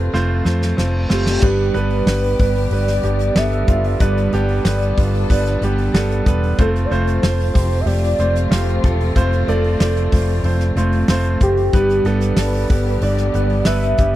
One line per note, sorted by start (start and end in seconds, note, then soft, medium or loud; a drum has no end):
0.00 1.38 C3 medium
0.00 1.38 F3 medium
0.00 0.13 A3 medium
0.00 1.39 A3 medium
0.00 0.14 C4 medium
0.00 0.14 F4 medium
0.00 1.38 F4 medium
0.00 1.45 G4 medium
0.00 0.47 A4 loud
0.00 1.43 B4 medium
0.00 0.14 C5 medium
0.13 0.40 F1 medium
0.13 0.42 A3 medium
0.13 0.42 C4 medium
0.13 0.42 F4 medium
0.13 0.42 C5 loud
0.13 snare soft
0.13 reverse cymbal medium
0.45 0.72 F2 medium
0.45 0.73 A3 medium
0.45 0.73 C4 medium
0.45 0.74 F4 medium
0.45 0.74 C5 medium
0.45 snare medium
0.62 snare medium
0.77 1.05 F1 medium
0.77 1.06 A3 medium
0.77 1.06 C4 medium
0.77 1.06 F4 medium
0.77 1.06 C5 medium
0.77 snare medium
1.09 1.37 F#1 medium
1.09 1.38 A3 medium
1.09 1.38 C4 medium
1.09 1.38 F4 medium
1.09 1.78 G4 medium
1.09 1.38 C5 loud
1.09 snare medium
1.26 snare medium
1.42 1.69 G1 loud
1.42 2.35 G2 medium
1.42 6.55 D3 medium
1.42 1.71 G3 medium
1.42 6.55 G3 medium
1.42 1.71 B3 medium
1.42 6.55 B3 medium
1.42 1.71 D4 medium
1.42 3.99 G4 medium
1.42 1.71 B4 loud
1.42 kick loud
1.42 crash medium
1.74 2.01 G1 medium
1.74 2.02 G3 medium
1.74 2.03 B3 medium
1.74 2.03 D4 medium
1.74 2.03 B4 loud
1.74 2.75 B4 loud
1.74 hi-hat pedal medium
1.74 open hi-hat medium
1.90 open hi-hat medium
2.06 2.33 G1 loud
2.06 2.35 G3 medium
2.06 2.35 B3 medium
2.06 2.35 D4 medium
2.06 2.36 B4 medium
2.06 snare loud
2.06 hi-hat pedal medium
2.06 open hi-hat loud
2.24 hi-hat pedal medium
2.24 open hi-hat soft
2.39 2.66 G1 medium
2.39 2.67 G3 medium
2.39 2.67 B3 medium
2.39 2.68 D4 medium
2.39 2.68 B4 medium
2.39 kick medium
2.39 hi-hat pedal medium
2.39 open hi-hat medium
2.55 hi-hat pedal medium
2.55 open hi-hat medium
2.71 2.97 G1 medium
2.71 3.00 G3 medium
2.71 3.00 B3 medium
2.71 3.00 D4 medium
2.71 3.00 B4 medium
2.71 3.39 D5 loud
2.71 hi-hat pedal medium
2.71 open hi-hat loud
2.87 snare soft
2.87 hi-hat pedal medium
2.87 open hi-hat soft
3.03 3.30 G1 medium
3.03 3.31 G3 medium
3.03 3.32 B3 medium
3.03 3.32 D4 medium
3.03 3.32 G4 medium
3.03 hi-hat pedal medium
3.03 open hi-hat medium
3.19 hi-hat pedal medium
3.19 open hi-hat soft
3.35 3.62 G1 medium
3.35 3.64 G3 medium
3.35 3.64 B3 medium
3.35 3.64 D4 medium
3.35 3.64 A4 medium
3.35 4.01 E5 loud
3.35 snare loud
3.35 hi-hat pedal medium
3.35 open hi-hat loud
3.52 hi-hat pedal medium
3.68 3.95 F#1 medium
3.68 3.96 G3 medium
3.68 3.96 B3 medium
3.68 3.96 D4 medium
3.68 3.96 F4 medium
3.68 kick loud
3.68 hi-hat pedal medium
3.68 open hi-hat medium
3.84 open hi-hat medium
4.00 4.27 G1 loud
4.00 4.93 G2 medium
4.00 4.28 G3 medium
4.00 4.29 B3 medium
4.00 4.28 D4 medium
4.00 6.56 A4 medium
4.00 4.29 B4 loud
4.00 4.31 D5 medium
4.00 kick loud
4.00 hi-hat pedal medium
4.00 open hi-hat medium
4.17 hi-hat pedal medium
4.33 4.59 G1 medium
4.33 4.61 G3 loud
4.33 4.61 B3 medium
4.33 4.61 D4 medium
4.33 4.61 G4 loud
4.33 6.23 D5 loud
4.33 hi-hat pedal medium
4.33 open hi-hat medium
4.49 open hi-hat medium
4.65 4.91 G1 loud
4.65 4.94 G3 medium
4.65 4.93 B3 medium
4.65 4.94 D4 medium
4.65 4.94 B4 medium
4.65 snare loud
4.65 hi-hat pedal medium
4.65 open hi-hat loud
4.81 hi-hat pedal medium
4.97 5.24 G1 loud
4.97 5.26 G3 medium
4.97 5.26 B3 medium
4.97 5.26 D4 medium
4.97 5.26 F4 medium
4.97 kick medium
4.97 hi-hat pedal medium
4.97 open hi-hat medium
5.15 open hi-hat medium
5.30 5.56 G1 medium
5.30 5.58 G3 medium
5.30 5.58 B3 medium
5.30 5.58 D4 medium
5.30 5.58 B4 medium
5.30 kick medium
5.30 hi-hat pedal medium
5.30 open hi-hat loud
5.46 snare soft
5.46 hi-hat pedal medium
5.61 5.88 G1 medium
5.61 5.90 G3 medium
5.61 5.90 B3 medium
5.61 5.90 D4 medium
5.61 5.91 G4 medium
5.61 hi-hat pedal medium
5.61 open hi-hat medium
5.78 open hi-hat medium
5.94 6.20 G1 loud
5.94 6.22 G3 medium
5.94 6.22 B3 loud
5.94 6.22 D4 medium
5.94 6.22 A4 loud
5.94 snare loud
5.94 hi-hat pedal medium
5.94 open hi-hat medium
6.11 hi-hat pedal medium
6.26 6.53 E1 medium
6.26 6.54 G3 medium
6.26 6.54 B3 medium
6.26 6.54 D4 medium
6.26 6.55 B4 loud
6.26 kick loud
6.26 hi-hat pedal medium
6.26 open hi-hat medium
6.44 open hi-hat medium
6.57 6.85 F1 loud
6.57 11.69 C3 medium
6.57 11.69 F3 medium
6.57 11.69 A3 medium
6.57 6.86 A3 loud
6.57 6.86 C4 medium
6.57 11.70 F4 medium
6.57 6.87 F4 medium
6.57 6.70 A4 medium
6.57 6.87 C5 loud
6.57 kick loud
6.57 hi-hat pedal medium
6.57 open hi-hat medium
6.76 hi-hat pedal medium
6.76 open hi-hat soft
6.85 6.93 D5 medium
6.91 7.17 F1 medium
6.91 7.19 A3 medium
6.91 7.19 C4 medium
6.91 7.19 F4 medium
6.91 7.19 C5 loud
6.91 7.82 C5 loud
6.91 hi-hat pedal medium
6.91 open hi-hat medium
7.07 hi-hat pedal medium
7.07 open hi-hat medium
7.23 7.49 F1 medium
7.23 7.51 A3 medium
7.23 7.51 C4 medium
7.23 7.51 F4 medium
7.23 7.51 C5 medium
7.23 snare loud
7.23 hi-hat pedal medium
7.23 open hi-hat medium
7.40 hi-hat pedal medium
7.40 open hi-hat soft
7.54 7.81 F1 medium
7.54 7.82 A3 medium
7.54 7.82 C4 medium
7.54 7.83 F4 medium
7.54 7.82 G4 medium
7.54 kick medium
7.54 hi-hat pedal medium
7.54 open hi-hat medium
7.72 hi-hat pedal medium
7.72 open hi-hat soft
7.81 7.88 E5 medium
7.86 8.13 F1 medium
7.86 8.14 A3 medium
7.86 8.15 C4 medium
7.86 8.15 F4 medium
7.86 8.15 G4 medium
7.86 8.53 D5 loud
7.86 hi-hat pedal medium
7.86 open hi-hat loud
8.03 hi-hat pedal medium
8.03 open hi-hat soft
8.19 8.45 F1 medium
8.19 8.47 A3 medium
8.19 8.47 C4 medium
8.19 8.48 F4 medium
8.19 8.47 C5 medium
8.19 hi-hat pedal medium
8.19 open hi-hat medium
8.35 hi-hat pedal medium
8.35 open hi-hat soft
8.51 8.78 F1 loud
8.51 8.79 A3 medium
8.51 8.79 C4 medium
8.51 8.79 F4 medium
8.51 8.79 G4 medium
8.51 9.15 C5 loud
8.51 snare loud
8.51 hi-hat pedal medium
8.51 open hi-hat loud
8.69 hi-hat pedal medium
8.84 9.10 E1 medium
8.84 9.12 A3 medium
8.84 9.12 C4 medium
8.84 9.12 F4 medium
8.84 9.12 A4 medium
8.84 kick loud
8.84 hi-hat pedal medium
8.84 open hi-hat medium
9.01 open hi-hat medium
9.15 9.42 F1 loud
9.15 9.44 A3 medium
9.15 9.44 C4 medium
9.15 9.44 F4 medium
9.15 9.50 C5 loud
9.15 9.44 C5 loud
9.15 kick loud
9.15 hi-hat pedal medium
9.15 open hi-hat medium
9.32 hi-hat pedal medium
9.48 9.74 F1 medium
9.48 9.76 A3 medium
9.48 9.76 C4 medium
9.48 9.76 F4 medium
9.48 9.80 A4 medium
9.48 9.76 D5 loud
9.48 hi-hat pedal medium
9.48 open hi-hat medium
9.64 open hi-hat medium
9.80 10.07 F1 medium
9.80 10.08 A3 medium
9.80 10.08 C4 medium
9.80 10.09 F4 medium
9.80 10.73 A4 medium
9.80 10.09 D5 medium
9.80 snare loud
9.80 hi-hat pedal medium
9.80 open hi-hat medium
9.96 hi-hat pedal medium
10.12 10.39 F1 medium
10.12 10.40 A3 medium
10.12 10.40 C4 medium
10.12 10.40 F4 medium
10.12 10.40 C5 medium
10.12 kick medium
10.12 hi-hat pedal medium
10.12 open hi-hat medium
10.29 open hi-hat medium
10.43 10.70 F1 medium
10.43 10.72 A3 medium
10.43 10.73 C4 medium
10.43 10.73 F4 medium
10.43 10.73 C5 medium
10.43 hi-hat pedal medium
10.43 open hi-hat loud
10.60 snare soft
10.60 hi-hat pedal medium
10.76 11.03 F1 medium
10.76 11.05 A3 medium
10.76 11.05 C4 medium
10.76 11.05 F4 medium
10.76 11.05 C5 medium
10.76 hi-hat pedal medium
10.76 open hi-hat medium
10.93 open hi-hat medium
11.08 11.35 F1 medium
11.08 11.37 A3 loud
11.08 11.37 C4 medium
11.08 11.37 F4 medium
11.08 11.37 C5 loud
11.08 snare loud
11.08 hi-hat pedal medium
11.08 open hi-hat loud
11.24 hi-hat pedal medium
11.40 11.68 F#1 medium
11.40 11.69 A3 medium
11.40 11.69 C4 medium
11.40 11.69 F4 medium
11.40 12.08 G4 medium
11.40 11.70 C5 medium
11.40 kick loud
11.40 hi-hat pedal medium
11.40 open hi-hat medium
11.57 open hi-hat soft
11.73 12.00 G1 loud
11.73 12.66 G2 medium
11.73 14.16 D3 medium
11.73 12.02 G3 medium
11.73 14.16 G3 medium
11.73 14.16 B3 medium
11.73 12.02 B3 medium
11.73 12.02 D4 medium
11.73 14.16 G4 medium
11.73 12.02 B4 loud
11.73 kick loud
11.73 hi-hat pedal medium
11.73 open hi-hat medium
11.89 hi-hat pedal medium
11.89 open hi-hat soft
12.04 12.31 G1 loud
12.04 12.34 G3 medium
12.04 12.34 B3 medium
12.04 12.34 D4 medium
12.04 12.34 A4 loud
12.04 13.04 B4 loud
12.04 hi-hat pedal medium
12.04 open hi-hat medium
12.21 hi-hat pedal medium
12.21 open hi-hat medium
12.36 12.64 G1 loud
12.36 12.66 G3 medium
12.36 12.66 B3 medium
12.36 12.66 D4 medium
12.36 12.66 A4 medium
12.36 snare loud
12.36 hi-hat pedal medium
12.36 open hi-hat loud
12.53 hi-hat pedal medium
12.53 open hi-hat soft
12.69 12.96 G1 medium
12.69 12.98 G3 medium
12.69 12.98 B3 medium
12.69 12.98 D4 medium
12.69 12.98 B4 medium
12.69 kick medium
12.69 hi-hat pedal medium
12.69 open hi-hat medium
12.86 hi-hat pedal medium
12.86 open hi-hat soft
13.01 13.28 G1 medium
13.01 13.30 G3 medium
13.01 13.30 B3 medium
13.01 13.30 D4 medium
13.01 13.65 D5 loud
13.01 13.31 D5 medium
13.01 hi-hat pedal medium
13.01 open hi-hat loud
13.17 snare soft
13.17 hi-hat pedal medium
13.34 13.61 G1 medium
13.34 13.63 G3 medium
13.34 13.63 B3 medium
13.34 13.63 D4 medium
13.34 13.63 B4 medium
13.34 hi-hat pedal medium
13.34 open hi-hat medium
13.50 open hi-hat soft
13.65 13.93 G1 loud
13.65 13.94 G3 medium
13.65 13.94 B3 medium
13.65 13.95 D4 medium
13.65 13.95 B4 loud
13.65 14.16 E5 loud
13.65 snare loud
13.65 hi-hat pedal medium
13.65 open hi-hat loud
13.82 hi-hat pedal medium
13.82 open hi-hat soft
13.98 14.16 F#1 medium
13.98 14.16 G3 medium
13.98 14.16 B3 medium
13.98 14.16 D4 medium
13.98 14.16 G4 medium
13.98 kick medium
13.98 hi-hat pedal medium
13.98 open hi-hat medium